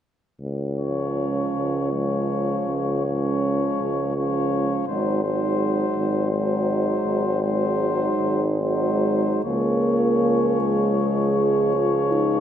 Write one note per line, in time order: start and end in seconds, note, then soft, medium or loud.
0.40 1.42 C#2 soft
0.78 1.91 F3 soft
0.78 1.91 G#3 soft
0.78 1.91 C#4 soft
0.78 1.90 C#5 soft
1.55 2.55 C#2 soft
1.92 3.03 F3 soft
1.92 3.03 G#3 soft
1.92 3.03 C#4 soft
1.92 3.02 C#5 soft
2.68 3.66 C#2 soft
3.05 4.14 F3 soft
3.05 4.13 G#3 soft
3.05 4.13 C#4 soft
3.05 4.13 C#5 soft
3.80 4.75 C#2 soft
4.16 4.86 F3 soft
4.16 4.86 G#3 soft
4.16 4.86 C#4 soft
4.16 4.86 C#5 soft
4.87 5.83 G#1 soft
4.87 5.23 F#3 soft
4.87 5.22 G#3 soft
4.87 5.23 D#4 soft
4.87 5.22 C5 soft
5.24 6.30 F#3 soft
5.24 6.30 G#3 soft
5.24 6.30 D#4 soft
5.24 6.30 C5 soft
5.96 6.92 G#1 soft
6.31 7.41 F#3 soft
6.31 7.25 G#3 soft
6.31 7.26 D#4 soft
6.31 7.40 C5 soft
7.05 8.07 G#1 soft
7.42 8.44 F#3 soft
7.42 8.59 G#3 soft
7.42 8.59 D#4 soft
7.42 8.44 C5 soft
8.21 9.31 G#1 soft
8.61 9.43 F#3 soft
8.61 9.44 G#3 soft
8.61 9.43 D#4 soft
8.61 9.43 C5 soft
9.44 12.40 C#2 soft
9.44 12.40 F3 soft
9.44 10.61 A#3 medium
9.44 12.40 G#4 soft
9.44 12.40 C#5 soft
10.59 11.76 G#3 soft
11.74 12.14 F4 medium
12.12 12.40 D#4 soft